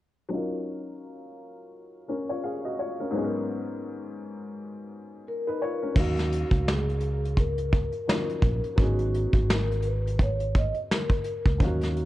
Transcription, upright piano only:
0.29 F#3 C#4 D#4
0.34 F4 A#4
2.08 C#4 A#4
2.29 F4 C#5
2.43 G#4 F5
2.65 F#4 D#5
2.79 F4 C#5
3.00 C#4 A#4
3.11 G#2 F#3 B3 C#4
3.16 D#4 G#4
3.24 A#4
5.47 D#4 B4
5.62 F4 C#5
5.82 C#4 A#4
5.94 F#3 C#4 D#4
5.99 A#4 F5
8.07 F3 C#4 D#4 F4 C#5
8.14 F#3
8.76 F#3 B3 C#4
8.81 D#4 G#4
11.58 F3 C#4 D#4
11.63 F#3 A#4 F5

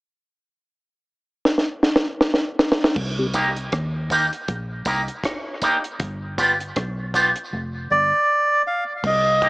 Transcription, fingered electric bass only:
2.97 C2
3.73 D#2
4.49 A#1
4.86 C2
6.01 G1
6.77 B1
7.53 F1
7.91 G1
9.04 C2

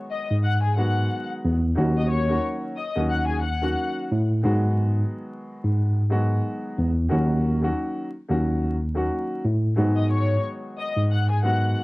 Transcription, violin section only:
0.11 D#5 D#6
0.44 F#5 F#6
0.63 G#4 G#5
0.77 F#5 F#6
1.97 D#5 D#6
2.11 C#5 C#6
2.77 D#5 D#6
3.10 F#5 F#6
3.28 G#4 G#5
3.44 F#5 F#6
9.96 D#5 D#6
10.12 C#5 C#6
10.79 D#5 D#6
11.11 F#5 F#6
11.30 G#4 G#5
11.44 F#5 F#6

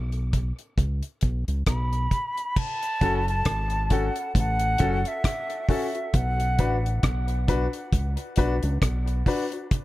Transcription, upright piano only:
3.01 C#4 F#4 A4
3.90 C#4 F#4 A4
4.79 C#4 F#4 A4
5.69 C#4 F#4 A4
5.95 F#4 A4
6.59 D4 F#4 B4
7.48 D4 F#4 B4
8.37 D4 F#4 B4
9.27 D4 F#4 B4
9.53 F#4 B4

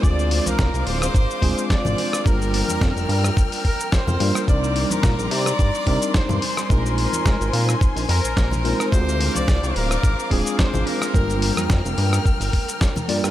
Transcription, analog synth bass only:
0.03 D2
0.46 C2
0.59 C2
0.74 C2
0.87 D1
1.15 G#1
1.42 D1
1.85 G#1
2.26 G1
2.69 F2
2.81 F2
2.96 F1
3.09 G2
4.07 F2
4.20 G2
4.48 C2
4.91 A#2
5.04 A#2
5.18 A#1
5.31 C3
5.59 G2
5.87 C3
6.29 G2
6.70 A#1
7.13 G#2
7.26 G#2
7.41 G#1
7.53 A#2
7.96 A#1
8.09 F2
8.24 A#1
8.37 A#1
8.92 D2
9.35 C2
9.48 C2
9.63 C2
9.76 D1
10.03 G#1
10.31 D1
10.74 G#1
11.15 G1
11.57 F2
11.70 F2
11.85 F1
11.98 G2
12.40 G1
13.09 G2
13.24 G2

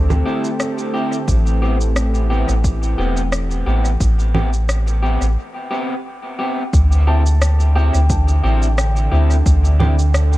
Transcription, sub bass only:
Already playing: D2
1.28 A1
2.48 A1
2.98 E1
3.66 A1
4.00 A1
5.21 A1
6.73 D2
7.94 D2
8.44 A1
9.12 D2
9.46 D2

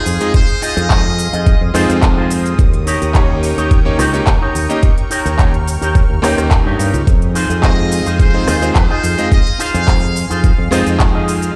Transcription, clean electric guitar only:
Already playing: D#4 F4 G#4 D#5
0.62 D#4 F4 G#4 D#5
1.32 D#4 F4 G#4 D#5
1.74 D#4 F4 G#4 C5
2.17 D#4 F4 G#4 C5
2.86 D#4 G4 A#4 C#5
3.57 D#4 G4 A#4 C#5
3.98 D#4 G4 A#4 C#5
4.41 D#4 G4 A#4 C#5
5.10 D#4 G4 A#4 C#5
5.81 D#4 G4 A#4 C#5
6.23 D#4 G4 A#4 C#5
6.51 muted clean electric guitar stroke
6.66 D#4 G4 A#4 C#5
7.35 D#4 F4 G#4 C5
8.05 D#4 F4 G#4 C5
8.47 D#4 F4 G#4 D#5
8.89 D#4 F4 G#4 D#5
9.59 D#4 F4 G#4 C5
10.30 D#4 F4 G#4 C5
10.71 D#4 F4 G#4 D#5
11.14 D#4 F4 G#4 D#5

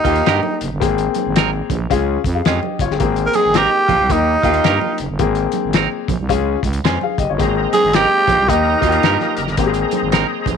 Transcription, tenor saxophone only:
Already playing: D#4
3.26 A#4
3.36 G#4
3.56 G4
4.11 D#4
7.74 G#4
7.95 G4
8.49 D#4

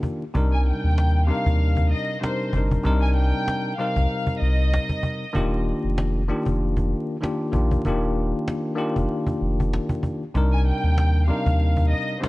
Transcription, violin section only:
0.52 G#5
0.67 G5
1.27 F5
1.91 D#5
2.23 C5
3.02 G#5
3.17 G5
3.79 F5
4.41 D#5
10.52 G#5
10.68 G5
11.27 F5
11.91 D#5
12.23 C5

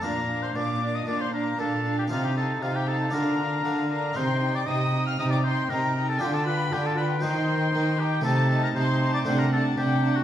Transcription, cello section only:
0.04 A#2
0.56 A#2
1.07 A#2
1.58 A#2
2.11 C3
2.62 C3
3.14 D3
3.66 D3
4.17 C3
4.69 C3
5.20 C3
5.71 C3
6.22 D3
6.74 D3
7.24 D#3
7.75 D#3
8.25 C3
8.76 C3
9.27 C3
9.78 C3

